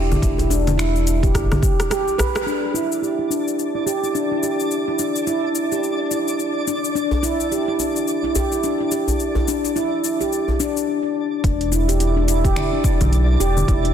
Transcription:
0.00 0.18 E1 loud
0.12 low conga medium
0.12 djembe bass medium
0.12 cabasa soft
0.22 1.31 E1 loud
0.22 kick loud
0.22 closed hi-hat medium
0.22 cabasa soft
0.38 0.49 E4 medium
0.38 closed hi-hat medium
0.38 djembe bass medium
0.38 cabasa soft
0.50 0.66 D4 medium
0.50 closed hi-hat soft
0.50 djembe tone medium
0.50 cabasa medium
0.67 closed hi-hat soft
0.67 djembe slap medium
0.67 low conga medium
0.67 cabasa soft
0.78 1.21 E4 medium
0.78 finger snap medium
0.78 closed hi-hat medium
0.78 cabasa soft
0.96 cabasa soft
1.07 closed hi-hat medium
1.07 djembe tone soft
1.07 cabasa medium
1.23 1.34 G4 medium
1.23 kick loud
1.23 closed hi-hat soft
1.23 djembe tone soft
1.23 cabasa soft
1.34 1.48 G1 medium
1.34 kick medium
1.34 cross-stick medium
1.34 closed hi-hat medium
1.34 cabasa soft
1.52 cross-stick medium
1.52 djembe slap soft
1.52 low conga medium
1.52 djembe bass medium
1.52 cabasa soft
1.62 1.78 G4 medium
1.62 kick loud
1.62 closed hi-hat soft
1.62 cabasa medium
1.80 cross-stick medium
1.80 closed hi-hat soft
1.80 cabasa soft
1.90 2.06 G4 medium
1.90 cross-stick medium
1.90 closed hi-hat medium
1.90 cabasa soft
2.08 djembe slap soft
2.08 cabasa soft
2.18 2.34 B4 medium
2.18 cross-stick loud
2.18 closed hi-hat soft
2.18 djembe bass medium
2.18 cabasa medium
2.35 cross-stick loud
2.35 djembe slap medium
2.35 djembe tone soft
2.35 cabasa soft
2.46 2.74 D4 medium
2.46 10.88 D4 medium
2.46 10.88 D5 medium
2.46 cabasa soft
2.74 3.01 E4 medium
2.74 cabasa medium
2.92 cabasa soft
3.02 3.18 G4 medium
3.02 cabasa soft
3.19 3.30 E4 medium
3.30 3.40 D4 medium
3.30 cabasa medium
3.48 cabasa soft
3.59 cabasa soft
3.75 3.86 E4 medium
3.86 4.02 G4 medium
3.86 cabasa medium
4.03 4.14 E4 medium
4.03 cabasa soft
4.15 4.31 D4 medium
4.15 cabasa soft
4.32 4.38 E4 medium
4.43 4.52 G4 medium
4.43 cabasa medium
4.60 cabasa soft
4.71 cabasa soft
4.88 4.98 E4 medium
4.99 5.15 D4 medium
4.99 cabasa medium
5.16 cabasa soft
5.27 5.70 E4 medium
5.27 cabasa soft
5.55 cabasa medium
5.72 5.83 G4 medium
5.72 cabasa soft
5.84 cabasa soft
6.11 6.66 E4 medium
6.11 cabasa medium
6.28 cabasa soft
6.40 cabasa soft
6.67 6.83 D4 medium
6.67 cabasa medium
6.85 cabasa soft
6.95 7.22 D4 medium
6.95 cabasa soft
7.11 djembe bass medium
7.23 7.50 E4 loud
7.23 djembe tone medium
7.23 cabasa medium
7.40 djembe slap soft
7.40 cabasa soft
7.52 7.67 G4 medium
7.52 cabasa soft
7.68 7.79 E4 medium
7.79 7.89 D4 medium
7.79 djembe tone soft
7.79 cabasa medium
7.96 cabasa soft
8.08 cabasa soft
8.23 8.34 E4 medium
8.23 djembe slap soft
8.23 djembe tone soft
8.35 8.50 G4 medium
8.35 djembe bass medium
8.35 cabasa medium
8.52 8.62 E4 medium
8.52 cabasa soft
8.63 8.79 D4 medium
8.63 cabasa soft
8.80 8.87 E4 medium
8.92 9.01 G4 medium
8.92 cabasa medium
9.08 djembe bass medium
9.08 cabasa soft
9.20 cabasa soft
9.35 9.47 E4 medium
9.35 djembe bass medium
9.47 9.64 D4 medium
9.47 djembe tone medium
9.47 cabasa medium
9.64 djembe slap soft
9.64 cabasa soft
9.76 10.19 E4 medium
9.76 cabasa soft
10.04 cabasa medium
10.20 10.31 G4 medium
10.20 djembe tone soft
10.20 cabasa soft
10.33 cabasa soft
10.48 djembe slap soft
10.48 djembe bass medium
10.60 10.75 D4 loud
10.60 cabasa medium
10.77 cabasa soft
11.43 12.53 E1 loud
11.43 13.94 D4 medium
11.43 11.71 D4 medium
11.43 13.94 D5 medium
11.43 kick loud
11.43 closed hi-hat medium
11.43 cabasa soft
11.61 closed hi-hat soft
11.72 11.88 E4 medium
11.72 cabasa medium
11.88 11.99 G4 medium
11.88 closed hi-hat soft
11.88 cabasa soft
12.00 12.16 E4 medium
12.00 closed hi-hat medium
12.00 cabasa soft
12.16 12.27 D4 medium
12.28 12.43 E4 loud
12.28 closed hi-hat medium
12.28 cabasa medium
12.44 12.51 G4 loud
12.44 kick loud
12.44 closed hi-hat soft
12.44 cabasa soft
12.56 12.71 E4 medium
12.56 finger snap medium
12.56 closed hi-hat medium
12.56 low conga medium
12.56 cabasa soft
12.73 12.83 D4 medium
12.84 13.00 E4 medium
12.84 kick loud
12.84 closed hi-hat soft
12.84 cabasa medium
13.01 13.37 B1 medium
13.01 closed hi-hat soft
13.01 low conga medium
13.01 cabasa soft
13.13 closed hi-hat medium
13.13 cabasa soft
13.40 13.64 E1 medium
13.40 13.67 G4 loud
13.40 closed hi-hat soft
13.40 cabasa medium
13.57 low conga medium
13.57 cabasa soft
13.68 13.94 E1 loud
13.68 13.84 E4 medium
13.68 kick loud
13.68 closed hi-hat medium
13.68 cabasa soft
13.85 13.94 D4 medium
13.85 closed hi-hat soft

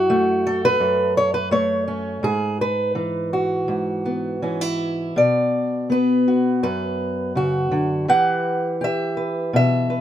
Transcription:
0.00 0.79 F#2 medium
0.00 0.45 E4 medium
0.00 0.63 F#4 medium
0.10 1.50 A3 medium
0.47 1.34 A4 medium
0.65 1.17 B4 loud
0.80 2.22 F#2 medium
1.17 1.34 C#5 medium
1.34 1.51 B4 medium
1.51 2.19 A3 medium
1.51 2.23 C#5 medium
1.88 2.23 C#4 soft
2.23 3.67 G#2 medium
2.23 2.59 G#4 medium
2.61 3.32 B4 medium
2.95 4.41 E3 medium
3.33 5.17 F#4 medium
3.68 5.12 G#2 medium
4.06 5.90 B3 soft
4.42 5.17 E3 medium
4.42 4.61 C#4 soft
4.61 5.17 E4 soft
5.16 6.63 B2 medium
5.16 5.91 D5 medium
5.90 8.04 B3 medium
5.90 6.62 B4 medium
6.28 7.36 F#4 soft
6.63 8.09 F#2 medium
6.63 7.36 B4 medium
7.35 7.71 C#3 medium
7.35 8.09 F#4 medium
7.71 8.08 D3 medium
8.08 10.01 E3 medium
8.08 8.80 G4 soft
8.08 9.16 B4 soft
8.08 8.82 F#5 loud
8.81 10.01 G4 medium
8.81 9.54 E5 medium
9.17 9.88 B4 soft
9.53 10.01 B2 medium
9.53 10.01 E5 loud
9.90 10.01 B4 soft

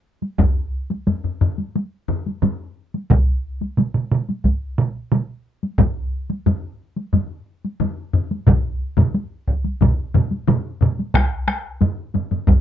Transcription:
0.22 taiko high soft
0.39 taiko medium
0.39 taiko low-mid medium
0.39 taiko high medium
0.90 taiko high medium
1.07 taiko low-mid medium
1.07 taiko high medium
1.24 taiko low-mid medium
1.41 taiko low-mid medium
1.58 taiko high soft
1.76 taiko high medium
2.08 taiko low-mid medium
2.26 taiko high soft
2.42 taiko low-mid medium
2.42 taiko high medium
2.94 taiko high soft
3.10 taiko medium
3.10 taiko mid medium
3.10 taiko high medium
3.61 taiko high soft
3.77 taiko mid medium
3.77 taiko high medium
3.94 taiko mid medium
4.12 taiko mid medium
4.29 taiko high soft
4.44 taiko medium
4.44 taiko high medium
4.78 taiko mid medium
5.12 taiko mid medium
5.12 taiko high medium
5.63 taiko high soft
5.78 taiko medium
5.78 taiko low-mid medium
5.78 taiko high medium
6.30 taiko high medium
6.46 taiko low-mid medium
6.46 taiko high medium
6.96 taiko high soft
7.13 taiko low-mid medium
7.13 taiko high medium
7.65 taiko high soft
7.80 taiko low-mid medium
7.80 taiko high medium
8.13 taiko low-mid medium
8.31 taiko high medium
8.47 taiko medium
8.47 taiko low-mid medium
8.47 taiko mid medium
8.47 taiko high medium
8.97 taiko low-mid medium
8.97 taiko mid medium
8.97 taiko high medium
9.14 taiko high medium
9.48 taiko medium
9.64 taiko high soft
9.81 taiko medium
9.81 taiko low-mid medium
9.81 taiko mid medium
9.81 taiko high medium
10.14 taiko low-mid medium
10.14 taiko mid medium
10.14 taiko high soft
10.31 taiko high soft
10.48 taiko low-mid medium
10.48 taiko mid medium
10.48 taiko high medium
10.81 taiko low-mid medium
10.81 taiko mid medium
10.99 taiko high soft
11.14 taiko rim medium
11.14 taiko medium
11.14 taiko high medium
11.48 taiko rim medium
11.48 taiko high medium
11.81 taiko low-mid medium
11.81 taiko high medium
12.14 taiko low-mid medium
12.14 taiko high medium
12.31 taiko low-mid medium
12.31 taiko high soft
12.47 taiko medium
12.47 taiko low-mid medium
12.47 taiko high medium

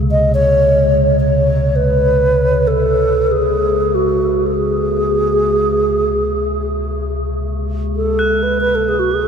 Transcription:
0.00 8.08 C#2 medium
0.11 0.32 D#5 medium
0.34 1.17 C#5 loud
1.20 1.77 C#5 medium
1.76 2.69 B4 medium
2.67 3.33 A4 medium
3.31 3.96 G#4 medium
3.95 4.48 F#4 medium
4.46 4.56 A4 soft
4.54 6.94 G#4 medium
7.96 8.44 A4 medium
8.09 9.28 C#2 medium
8.19 9.28 F#6 soft
8.43 8.58 B4 medium
8.61 8.76 B4 medium
8.75 8.90 A4 medium
8.88 9.01 G#4 medium
8.99 9.13 F#4 medium
9.11 9.24 G#4 medium
9.22 9.28 A4 medium

